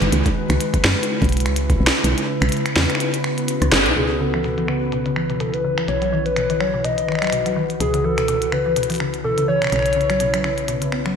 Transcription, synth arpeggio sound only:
0, 0, Header, 1, 2, 480
1, 0, Start_track
1, 0, Key_signature, 4, "minor"
1, 0, Tempo, 480000
1, 124, Time_signature, 4, 2, 24, 8
1, 11160, End_track
2, 0, Start_track
2, 0, Title_t, "Synth arpeggio sound"
2, 0, Program_c, 0, 84
2, 3963, Note_on_c, 0, 47, 98
2, 4016, Note_off_c, 0, 47, 0
2, 4204, Note_on_c, 0, 49, 79
2, 4292, Note_off_c, 0, 49, 0
2, 4338, Note_on_c, 0, 52, 78
2, 4439, Note_off_c, 0, 52, 0
2, 4444, Note_on_c, 0, 47, 80
2, 4496, Note_off_c, 0, 47, 0
2, 4578, Note_on_c, 0, 52, 74
2, 4647, Note_off_c, 0, 52, 0
2, 4684, Note_on_c, 0, 49, 73
2, 4736, Note_off_c, 0, 49, 0
2, 4923, Note_on_c, 0, 47, 81
2, 5011, Note_off_c, 0, 47, 0
2, 5056, Note_on_c, 0, 49, 71
2, 5126, Note_off_c, 0, 49, 0
2, 5163, Note_on_c, 0, 52, 73
2, 5251, Note_off_c, 0, 52, 0
2, 5297, Note_on_c, 0, 47, 75
2, 5339, Note_off_c, 0, 47, 0
2, 5403, Note_on_c, 0, 47, 97
2, 5456, Note_off_c, 0, 47, 0
2, 5643, Note_on_c, 0, 49, 73
2, 5731, Note_off_c, 0, 49, 0
2, 5778, Note_on_c, 0, 52, 77
2, 5879, Note_off_c, 0, 52, 0
2, 5884, Note_on_c, 0, 47, 80
2, 5937, Note_off_c, 0, 47, 0
2, 6019, Note_on_c, 0, 54, 75
2, 6088, Note_off_c, 0, 54, 0
2, 6125, Note_on_c, 0, 51, 78
2, 6177, Note_off_c, 0, 51, 0
2, 6364, Note_on_c, 0, 47, 80
2, 6452, Note_off_c, 0, 47, 0
2, 6499, Note_on_c, 0, 51, 74
2, 6568, Note_off_c, 0, 51, 0
2, 6605, Note_on_c, 0, 54, 71
2, 6692, Note_off_c, 0, 54, 0
2, 6739, Note_on_c, 0, 47, 74
2, 6780, Note_off_c, 0, 47, 0
2, 6844, Note_on_c, 0, 47, 101
2, 6897, Note_off_c, 0, 47, 0
2, 7084, Note_on_c, 0, 51, 76
2, 7172, Note_off_c, 0, 51, 0
2, 7218, Note_on_c, 0, 54, 76
2, 7318, Note_off_c, 0, 54, 0
2, 7323, Note_on_c, 0, 47, 78
2, 7376, Note_off_c, 0, 47, 0
2, 7457, Note_on_c, 0, 54, 75
2, 7527, Note_off_c, 0, 54, 0
2, 7563, Note_on_c, 0, 51, 74
2, 7616, Note_off_c, 0, 51, 0
2, 7802, Note_on_c, 0, 47, 80
2, 7891, Note_off_c, 0, 47, 0
2, 7937, Note_on_c, 0, 49, 75
2, 8007, Note_off_c, 0, 49, 0
2, 8042, Note_on_c, 0, 52, 75
2, 8131, Note_off_c, 0, 52, 0
2, 8177, Note_on_c, 0, 47, 80
2, 8219, Note_off_c, 0, 47, 0
2, 8283, Note_on_c, 0, 47, 99
2, 8336, Note_off_c, 0, 47, 0
2, 8522, Note_on_c, 0, 49, 75
2, 8611, Note_off_c, 0, 49, 0
2, 8658, Note_on_c, 0, 52, 73
2, 8758, Note_off_c, 0, 52, 0
2, 8763, Note_on_c, 0, 47, 81
2, 8816, Note_off_c, 0, 47, 0
2, 8897, Note_on_c, 0, 52, 72
2, 8966, Note_off_c, 0, 52, 0
2, 9003, Note_on_c, 0, 49, 78
2, 9056, Note_off_c, 0, 49, 0
2, 9243, Note_on_c, 0, 47, 81
2, 9331, Note_off_c, 0, 47, 0
2, 9378, Note_on_c, 0, 49, 74
2, 9447, Note_off_c, 0, 49, 0
2, 9483, Note_on_c, 0, 52, 76
2, 9571, Note_off_c, 0, 52, 0
2, 9618, Note_on_c, 0, 47, 77
2, 9660, Note_off_c, 0, 47, 0
2, 9724, Note_on_c, 0, 47, 101
2, 9776, Note_off_c, 0, 47, 0
2, 9964, Note_on_c, 0, 49, 76
2, 10051, Note_off_c, 0, 49, 0
2, 10097, Note_on_c, 0, 54, 80
2, 10198, Note_off_c, 0, 54, 0
2, 10204, Note_on_c, 0, 47, 80
2, 10257, Note_off_c, 0, 47, 0
2, 10338, Note_on_c, 0, 54, 77
2, 10407, Note_off_c, 0, 54, 0
2, 10443, Note_on_c, 0, 49, 72
2, 10496, Note_off_c, 0, 49, 0
2, 10683, Note_on_c, 0, 47, 83
2, 10771, Note_off_c, 0, 47, 0
2, 10818, Note_on_c, 0, 49, 72
2, 10887, Note_off_c, 0, 49, 0
2, 10923, Note_on_c, 0, 59, 77
2, 11051, Note_off_c, 0, 59, 0
2, 11058, Note_on_c, 0, 54, 75
2, 11127, Note_off_c, 0, 54, 0
2, 11160, End_track
0, 0, End_of_file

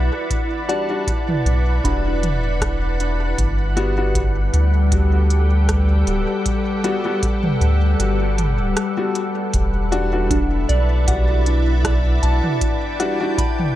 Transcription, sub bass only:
0, 0, Header, 1, 2, 480
1, 0, Start_track
1, 0, Key_signature, 1, "minor"
1, 0, Tempo, 769231
1, 190, Time_signature, 4, 2, 24, 8
1, 8583, End_track
2, 0, Start_track
2, 0, Title_t, "Sub bass"
2, 0, Program_c, 0, 38
2, 0, Note_on_c, 0, 35, 94
2, 64, Note_off_c, 0, 35, 0
2, 909, Note_on_c, 0, 35, 95
2, 1123, Note_off_c, 0, 35, 0
2, 1149, Note_on_c, 0, 28, 100
2, 2088, Note_off_c, 0, 28, 0
2, 2109, Note_on_c, 0, 31, 97
2, 2808, Note_off_c, 0, 31, 0
2, 2830, Note_on_c, 0, 38, 94
2, 3769, Note_off_c, 0, 38, 0
2, 3790, Note_on_c, 0, 26, 95
2, 3905, Note_off_c, 0, 26, 0
2, 4748, Note_on_c, 0, 38, 93
2, 4962, Note_off_c, 0, 38, 0
2, 4989, Note_on_c, 0, 31, 100
2, 5359, Note_on_c, 0, 26, 94
2, 5368, Note_off_c, 0, 31, 0
2, 5456, Note_off_c, 0, 26, 0
2, 5950, Note_on_c, 0, 28, 98
2, 6649, Note_off_c, 0, 28, 0
2, 6671, Note_on_c, 0, 35, 95
2, 7609, Note_off_c, 0, 35, 0
2, 7630, Note_on_c, 0, 35, 95
2, 7745, Note_off_c, 0, 35, 0
2, 8583, End_track
0, 0, End_of_file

